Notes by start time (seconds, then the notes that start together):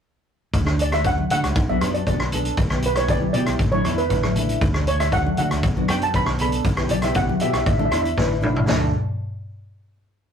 0.53 D2, kick, closed hi-hat
0.64 A3 D4 F#4, cross-stick
0.79 D5, closed hi-hat
0.91 A3 D4 F#4 E5, cross-stick, closed hi-hat
1.04 A3 D4 F#4 F#5, kick, closed hi-hat
1.18 high conga
1.30 D3 A3 D4 F#4 F#5, closed hi-hat, low conga
1.44 C#2, cross-stick, closed hi-hat
1.56 B1, kick, closed hi-hat
1.69 B3 D4 F#4 E5, high conga
1.81 F#2 B3 D4 F#4, cross-stick, closed hi-hat
1.94 D5, closed hi-hat
2.06 B1 B3 D4 F#4 D5, kick, closed hi-hat
2.20 cross-stick
2.32 B3 D4 A4, closed hi-hat, low conga
2.45 closed hi-hat
2.57 B1, kick, closed hi-hat
2.70 B3 E4 G4, cross-stick
2.82 B4, closed hi-hat
2.96 B3 E4 G4 C#5, cross-stick, closed hi-hat
3.08 B3 E4 G4 D5, kick, closed hi-hat
3.22 high conga
3.33 B2 B3 E4 G4 D5, closed hi-hat, low conga
3.46 B1, cross-stick, closed hi-hat
3.59 A1, kick, closed hi-hat
3.72 A3 D4 E4 C#5, high conga
3.84 E2 A3 D4 E4, cross-stick, closed hi-hat
3.98 B4, closed hi-hat
4.09 A1 A3 D4 E4 B4, kick, closed hi-hat
4.23 cross-stick, high conga
4.35 A3 D4 E4, closed hi-hat, low conga
4.49 closed hi-hat
4.61 D2, kick, closed hi-hat
4.74 A3 D4 F#4, cross-stick
4.87 C#5, closed hi-hat
5.00 A3 D4 F#4 E5, cross-stick, closed hi-hat
5.12 A3 D4 F#4 F#5, kick, closed hi-hat
5.26 high conga
5.37 D3 A3 D4 F#4 F#5, closed hi-hat, low conga
5.51 D2, cross-stick, closed hi-hat
5.63 B1, kick, closed hi-hat
5.76 B3 D4 F#4, high conga
5.88 F#2 B3 D4 F#4 G5, cross-stick, closed hi-hat
6.02 A5, closed hi-hat
6.14 B1 B3 D4 F#4 B5, kick, closed hi-hat
6.26 cross-stick
6.39 B3 D4 A4 B5, closed hi-hat, low conga
6.52 closed hi-hat
6.64 B1, kick, closed hi-hat
6.77 B3 E4 G4, cross-stick
6.89 D5, closed hi-hat, high conga, low conga
7.02 B3 E4 G4 E5, cross-stick, closed hi-hat
7.14 B3 E4 G4 F#5, kick, closed hi-hat
7.29 high conga
7.39 B2 B3 E4 G4 E5, closed hi-hat, low conga
7.50 B1 E5, cross-stick, closed hi-hat
7.57 E5
7.64 A1 E5, kick, closed hi-hat
7.72 E5
7.79 D4 E4 A4 E5, high conga
7.85 E5
7.91 E2 D4 E4 F#4 E5, cross-stick, closed hi-hat
8.02 E5, closed hi-hat
8.17 A1 D4 E4 B4, kick, snare
8.41 D4 E4 F#4, mid tom, low conga
8.56 floor tom
8.67 D2 D4 F#4 A4 D5, snare, floor tom, splash, high conga